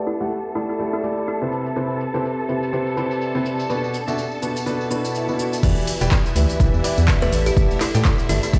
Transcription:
Already playing: ambient pad E4 A4 B4 E5 F#5, string section A4 A5
0.07 kalimba E4, shaker
0.21 grand piano A3 E4 G4 A4 F#5, shaker
0.31 ambient pad B5, shaker
0.55 grand piano A3 E4 G4 A4 D5, kalimba E4, shaker
0.69 kalimba E4, shaker
0.79 grand piano A3 E4 G4 A4 D5, shaker
0.93 kalimba E4
1.04 grand piano A3 E4 G4 A4 D5, shaker
1.18 shaker
1.28 kalimba E4, shaker
1.42 grand piano C3 E4 G4 B4 C5
1.52 ambient pad C4, shaker
1.66 shaker
1.76 grand piano C3 E4 G4 B4 C5, tambourine, shaker
1.88 ambient pad G4, tambourine
2.01 shaker
2.14 grand piano C3 E4 G4 B4 C5, tambourine, shaker
2.25 tambourine, shaker
2.39 tambourine
2.49 grand piano C3 E4 G4 B4 C5, ambient pad D5, shaker
2.62 tambourine, shaker
2.73 grand piano C3 E4 G4 B4 C5, tambourine, shaker
2.87 tambourine
2.97 grand piano C3 E4 G4 B4 C5, shaker
3.11 tambourine, shaker
3.21 tambourine, shaker
3.35 grand piano C3 E4 G4 B4 C5, tambourine
3.46 shaker
3.59 tambourine, shaker
3.69 grand piano B2 D4 F#4 A4 B4, ambient pad B3, tambourine, shaker
3.84 tambourine
3.94 shaker
4.08 grand piano B2 D4 F#4 A4 E5, tambourine, shaker
4.18 tambourine, shaker
4.32 ambient pad F#4, tambourine
4.42 grand piano B2 D4 F#4 A4 B4, shaker
4.56 ambient pad B4, tambourine, shaker
4.66 grand piano B2 D4 F#4 A4 B4, tambourine, swell, shaker
4.81 tambourine
4.91 grand piano B2 D4 F#4 A4 B4, shaker
5.04 tambourine, shaker
5.15 tambourine, shaker
5.29 grand piano B2 D4 F#4 A4 B4, tambourine
5.39 shaker
5.53 tambourine, shaker
5.63 fm bass E2, grand piano E3 G4 B4 D5 E5, ambient pad E4, string section E4 E5, kick, closed hi-hat, tambourine, crash, shaker
5.77 tambourine, shaker
5.87 closed hi-hat, open hi-hat, shaker
6.01 fm bass E1, grand piano E3 G4 B4 D5 G5, closed hi-hat, tambourine, shaker
6.11 kick, snare, clap, closed hi-hat, tambourine, shaker
6.26 tambourine, shaker
6.36 fm bass D2, grand piano E3 G4 B4 D5 E5, closed hi-hat, open hi-hat, shaker
6.40 ambient pad F#5
6.49 closed hi-hat, tambourine, shaker
6.60 fm bass B1, grand piano E3 G4 B4 D5 E5, kick, closed hi-hat, tambourine, shaker
6.74 fm bass E2, tambourine
6.84 grand piano E3 G4 B4 D5 E5, closed hi-hat, open hi-hat, shaker
6.98 fm bass E2, closed hi-hat, tambourine, shaker
7.08 kick, snare, clap, closed hi-hat, open hi-hat, tambourine, shaker
7.22 fm bass E2, grand piano A3 G4 A4 D5 E5, kalimba B4, tambourine, shaker
7.32 fm bass A1, ambient pad A4, closed hi-hat, open hi-hat, shaker
7.46 kalimba G4, closed hi-hat, tambourine, shaker
7.56 fm bass A1, grand piano A3 G4 A4 D5 E5, kick, closed hi-hat, tambourine, shaker
7.71 snare, tambourine, shaker
7.81 kalimba E4, snare, clap, closed hi-hat, open hi-hat, shaker
7.94 fm bass A2, grand piano A3 G4 A4 D5 G5, ambient pad E5, snare, closed hi-hat, tambourine, shaker
8.05 kick, snare, clap, closed hi-hat, tambourine, shaker
8.16 ambient pad B5, tambourine, shaker
8.29 fm bass G1, grand piano A3 G4 A4 D5 E5, kalimba E4, closed hi-hat, open hi-hat, shaker
8.43 kalimba E4, closed hi-hat, tambourine, shaker
8.53 fm bass E2, grand piano A3 G4 A4 D5 E5, kick, closed hi-hat, tambourine, shaker

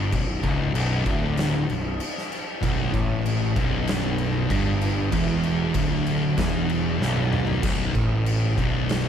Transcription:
Already playing: distorted electric guitar G2
0.12 picked electric bass B0, distorted electric guitar B1, kick, crash
0.43 picked electric bass C#1, distorted electric guitar C#2, kick, crash
0.74 picked electric bass B0, distorted electric guitar B1, crash
1.06 picked electric bass D1, distorted electric guitar D2, kick, crash
1.37 snare, crash
1.69 picked electric bass B0, distorted electric guitar B1, crash
2.00 crash
2.18 snare
2.32 crash
2.61 picked electric bass B0, distorted electric guitar B1, kick, crash
2.93 picked electric bass A1, distorted electric guitar A2, kick, crash
3.26 crash
3.56 picked electric bass B0, distorted electric guitar B1, kick, crash
3.87 snare, crash
4.18 crash
4.50 picked electric bass G1, distorted electric guitar G2, kick, crash
4.81 crash
5.12 picked electric bass E1, distorted electric guitar E2, kick, crash
5.43 crash
5.74 picked electric bass D1, distorted electric guitar D2, kick, crash
6.06 crash
6.38 picked electric bass E1, distorted electric guitar E2, kick, snare, crash
6.69 crash
7.00 picked electric bass B0, distorted electric guitar B1, snare
7.17 high tom
7.33 mid tom
7.47 floor tom
7.63 picked electric bass B0, distorted electric guitar B1, kick, crash
7.95 picked electric bass A1, distorted electric guitar A2, kick, crash
8.26 crash
8.58 picked electric bass B0, distorted electric guitar B1, kick, crash
8.89 snare, crash

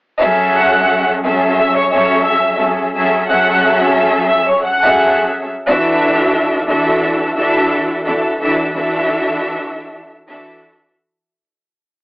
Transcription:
0.20 string section F#3 C#4 G#4 A4 E5
0.55 violin section F#5 F#6
1.23 string section F#3 C#4 G#4 A4 E5
1.59 violin section E5 E6
1.76 violin section C#5 C#6
1.91 string section F#3 C#4 G#4 A4 E5, violin section C#5 C#6
2.25 violin section E5 E6
2.59 string section F#3 C#4 G#4 A4 E5
2.94 string section F#3 C#4 G#4 A4 E5
3.29 string section F#3 C#4 G#4 A4 E5, violin section F#5 F#6
4.28 violin section E5 E6
4.49 violin section C#5 C#6
4.64 violin section F#5 F#6
4.82 string section F#3 C#4 G#4 A4 E5
5.67 string section E3 D4 F#4 A4 E5
6.68 string section E3 D4 F#4 A4 E5
7.36 string section E3 D4 F#4 A4 E5
8.05 string section E3 D4 F#4 A4 E5
8.39 string section E3 D4 F#4 A4 E5
8.73 string section E3 D4 F#4 A4 E5
10.29 string section E3 D4 F#4 A4 E5

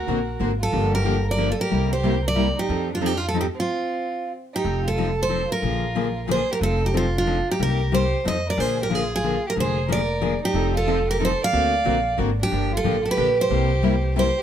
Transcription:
Already playing: violin F#4, steel-string acoustic guitar A#4
0.07 upright bass A#1, steel-string acoustic guitar D3 A#3 C4 F#4 A#4 C5
0.39 upright bass G#1, steel-string acoustic guitar D3 A#3 C4 F#4 A#4 C5
0.60 violin F4, steel-string acoustic guitar A4
0.72 upright bass G1, steel-string acoustic guitar D3 F3 A#3 D4 G4
0.93 violin G4, steel-string acoustic guitar A#4
1.05 steel-string acoustic guitar D3 F3 A#3 D4 G4
1.28 violin A#4, steel-string acoustic guitar D5
1.37 steel-string acoustic guitar D3 F3 A#3 D4 G4
1.50 violin F4, steel-string acoustic guitar A4
1.59 violin G4, steel-string acoustic guitar A#4
1.71 upright bass C2, steel-string acoustic guitar C3 G3 A#3 E4 G4
1.92 violin G4, steel-string acoustic guitar C5
2.03 steel-string acoustic guitar C3 G3 A#3 E4 G4
2.26 violin A#4, steel-string acoustic guitar D5
2.35 steel-string acoustic guitar C3 G3 A#3 E4 G4
2.58 violin D#4, steel-string acoustic guitar G4
2.69 upright bass F2, steel-string acoustic guitar F3 C4 D#4 A4
2.92 violin D4, steel-string acoustic guitar F4
3.01 steel-string acoustic guitar F3 C4 D#4 A4, violin D#4
3.06 steel-string acoustic guitar G4
3.14 violin D4, steel-string acoustic guitar F4
3.24 violin F4
3.28 steel-string acoustic guitar A4
3.34 steel-string acoustic guitar F3 C4 D#4 A4, violin D#4
3.41 steel-string acoustic guitar G4
3.54 violin C4
3.60 steel-string acoustic guitar F4
4.53 violin D#4, steel-string acoustic guitar G4
4.64 upright bass F1, steel-string acoustic guitar F3 C4 D#4 A4
4.84 violin F4, steel-string acoustic guitar A4
4.98 steel-string acoustic guitar F3 C4 D#4 A4
5.19 violin A4, steel-string acoustic guitar C5
5.29 steel-string acoustic guitar F3 C4 D#4 A4
5.49 violin F4, steel-string acoustic guitar A#4
5.62 upright bass A#1, steel-string acoustic guitar D3 F3 A#3 D4 G#4
5.95 steel-string acoustic guitar D3 F3 A#3 D4 G#4
6.28 steel-string acoustic guitar D3 F3 A#3 D4 G#4 C5, violin G#4
6.51 violin G4, steel-string acoustic guitar A#4
6.61 upright bass F1, steel-string acoustic guitar F3 C4 D#4 A4, violin F4
6.84 violin D#4, steel-string acoustic guitar G4
6.94 steel-string acoustic guitar F3 C4 D#4 F4 A4, violin C4
7.17 violin D4, steel-string acoustic guitar F4
7.26 steel-string acoustic guitar F3 C4 D#4 A4
7.50 violin D#4, steel-string acoustic guitar G4
7.59 upright bass C2, steel-string acoustic guitar C3 G3 A#3 D#4 G4, violin G4
7.63 steel-string acoustic guitar A#4
7.92 steel-string acoustic guitar C3 G3 A#3 D#4 G4 C5, violin G4
8.25 upright bass F2, steel-string acoustic guitar F3 C4 D#4 A4 D#5, violin C5
8.49 violin A#4, steel-string acoustic guitar D5
8.57 upright bass A#1, steel-string acoustic guitar D3 F3 A#3 D4 G#4 C5, violin G#4
8.82 violin G4, steel-string acoustic guitar A#4
8.90 steel-string acoustic guitar D3 F3 A#3 D4 G#4, violin F4
8.95 steel-string acoustic guitar G#4
9.14 violin F4, steel-string acoustic guitar G#4
9.24 steel-string acoustic guitar D3 F3 A#3 D4 G#4
9.47 violin G4, steel-string acoustic guitar A#4
9.56 upright bass F1, steel-string acoustic guitar D3 F3 A#3 D4 G#4, violin G#4
9.60 steel-string acoustic guitar C5
9.88 steel-string acoustic guitar D3 F3 A#3 D4 G#4, violin A#4
9.92 steel-string acoustic guitar D5
10.21 steel-string acoustic guitar D3 F3 A#3 D4 G#4
10.43 violin D#4, steel-string acoustic guitar G4
10.54 upright bass F1, steel-string acoustic guitar F3 C4 D#4 A4
10.76 violin F4, steel-string acoustic guitar A4
10.87 steel-string acoustic guitar F3 C4 D#4 A4
11.10 violin G4, steel-string acoustic guitar A#4
11.20 steel-string acoustic guitar F3 C4 D#4 A4, violin A4
11.25 steel-string acoustic guitar C5
11.42 violin D5, steel-string acoustic guitar F5
11.52 upright bass D2, steel-string acoustic guitar D3 A#3 C4 F#4 A#4 C5
11.85 upright bass A#1, steel-string acoustic guitar D3 A#3 C4 F#4 A#4 C5
12.18 upright bass G#1, steel-string acoustic guitar D3 A#3 C4 F#4 A#4 C5
12.40 violin D4, steel-string acoustic guitar G4
12.51 upright bass G1, steel-string acoustic guitar D3 F3 A#3 D4 G4
12.72 violin F4
12.77 steel-string acoustic guitar A4
12.84 upright bass A1, steel-string acoustic guitar D3 F3 A#3 D4 G4
13.02 violin F4, steel-string acoustic guitar A4
13.07 violin G4, steel-string acoustic guitar B4
13.16 upright bass A#1, steel-string acoustic guitar D3 F3 A#3 D4 G4
13.38 violin G4, steel-string acoustic guitar C5
13.50 upright bass C2, steel-string acoustic guitar C3 G3 A#3 E4 G4
13.82 steel-string acoustic guitar C3 G3 A#3 E4 G4
14.16 steel-string acoustic guitar C3 G3 A#3 E4 G4 C5, violin G4
14.38 violin G4

